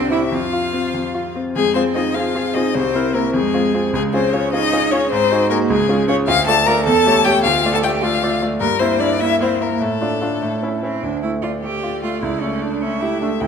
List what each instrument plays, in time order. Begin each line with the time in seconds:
Already playing: grand piano C2 C4, cello C4, violin C5
0.11 cello E4, grand piano E4 G4, violin E5
0.32 grand piano F2, cello F4, violin F5
0.53 grand piano F4
0.73 grand piano C4
0.94 grand piano F2
1.15 grand piano F4
1.36 grand piano C4
1.56 grand piano F2, cello G#3, violin G#4
1.75 grand piano C4 F4 G#4, cello C4, violin C5
1.95 grand piano C4 F4 G#4, cello D#4, violin D#5
2.14 grand piano C4 F4 G#4, cello F4, violin F5
2.35 grand piano C4 F4 G#4
2.54 grand piano C4 F4 G#4, cello D#4, violin D#5
2.74 grand piano C2, cello C4, violin C5
2.95 grand piano C4 E4 A#4
3.14 cello A#3, grand piano C4 E4 A#4, violin A#4
3.34 grand piano F2, cello G#3, violin G#4
3.54 grand piano C4 F4 G#4
3.74 grand piano C4 F4 G#4
3.93 grand piano C#2, cello G#3, violin G#4
4.13 cello C4, grand piano C#4 F4 G#4, violin C5
4.33 grand piano C#4 F4 G#4, cello C#4, violin C#5
4.52 grand piano C#4 F4 G#4, cello D#4, violin D#5
4.73 grand piano C#4 F4 G#4
4.91 cello C#4, grand piano C#4 F4 G#4, violin C#5
5.10 grand piano G#2, cello C4, violin C5
5.31 grand piano D#4 F#4 G#4
5.49 cello A#3, grand piano D#4 F#4 G#4, violin A#4
5.69 grand piano C#2, cello G#3, violin G#4
5.89 grand piano C#4 F4 G#4
6.07 cello C#4, grand piano C#4 F4 G#4, violin C#5
6.27 grand piano D2, cello F4, violin F5
6.47 grand piano A3 F4 D5, cello A4, violin A5
6.66 grand piano A3 F4 D5, cello A#4, violin A#5
6.85 grand piano E2, cello A4, violin A5
7.06 grand piano A3 G4 C#5
7.24 grand piano A3 G4 C#5, cello G4, violin G5
7.43 grand piano D2, cello F4, violin F5
7.65 grand piano A3 F4 D5
7.73 cello A4, violin A5
7.82 grand piano A3 F4 D5, cello G4, violin G5
8.02 grand piano A3 F4 D5, cello F4, violin F5
8.23 grand piano A3 F4 D5
8.42 grand piano A3 F4 D5
8.59 grand piano G2, cello A#3, violin A#4
8.79 grand piano A#3 E4 E5, cello C4, violin C5
8.98 grand piano A#3 E4 E5, cello D4, violin D5
9.19 grand piano A#3 E4 E5, cello E4, violin E5
9.39 grand piano A#3 E4 E5, cello C4, violin C5
9.60 cello A#3, grand piano A#3 E4 E5, violin A#4
9.79 grand piano A2, cello A3, violin A4
10.01 grand piano D4 F4 D5
10.22 grand piano D4 F4 D5
10.42 grand piano A2
10.63 grand piano C#4 E4 E5
10.82 cello C4, grand piano C#4 E4 E5
11.03 grand piano D2, cello D4
11.23 grand piano A3, cello E4
11.42 cello F4, grand piano D5
11.62 grand piano A3, cello G4, violin D5
11.83 grand piano F4
12.03 grand piano A3, cello F4
12.22 grand piano C#2, cello E4
12.41 grand piano A3, cello C#4
12.62 cello D4, grand piano A4
12.82 grand piano A3, cello C#4, violin E5
13.01 cello E4, grand piano G4
13.20 grand piano A3, cello D4
13.41 grand piano D2, cello E4, violin G5